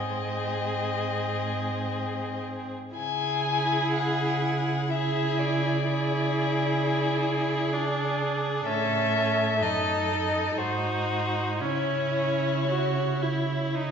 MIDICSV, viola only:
0, 0, Header, 1, 2, 480
1, 0, Start_track
1, 0, Key_signature, 4, "minor"
1, 0, Tempo, 1061947
1, 1334, Time_signature, 3, 2, 24, 8
1, 1334, Tempo, 1001669
1, 1814, Tempo, 970874
1, 2774, Tempo, 931677
1, 4694, Tempo, 964630
1, 5174, Tempo, 1025641
1, 5654, Tempo, 1071429
1, 6684, End_track
2, 0, Start_track
2, 0, Title_t, "Viola"
2, 0, Program_c, 0, 41
2, 0, Note_on_c, 0, 60, 33
2, 1217, Note_off_c, 0, 60, 0
2, 1332, Note_on_c, 0, 64, 42
2, 2270, Note_off_c, 0, 64, 0
2, 2290, Note_on_c, 0, 64, 44
2, 2764, Note_off_c, 0, 64, 0
2, 2768, Note_on_c, 0, 64, 49
2, 3718, Note_on_c, 0, 62, 47
2, 3726, Note_off_c, 0, 64, 0
2, 4201, Note_on_c, 0, 61, 48
2, 4209, Note_off_c, 0, 62, 0
2, 4686, Note_off_c, 0, 61, 0
2, 4689, Note_on_c, 0, 63, 42
2, 5162, Note_off_c, 0, 63, 0
2, 5170, Note_on_c, 0, 63, 45
2, 5656, Note_on_c, 0, 61, 39
2, 5662, Note_off_c, 0, 63, 0
2, 6087, Note_off_c, 0, 61, 0
2, 6133, Note_on_c, 0, 66, 44
2, 6373, Note_on_c, 0, 64, 34
2, 6380, Note_off_c, 0, 66, 0
2, 6612, Note_on_c, 0, 63, 40
2, 6619, Note_off_c, 0, 64, 0
2, 6684, Note_off_c, 0, 63, 0
2, 6684, End_track
0, 0, End_of_file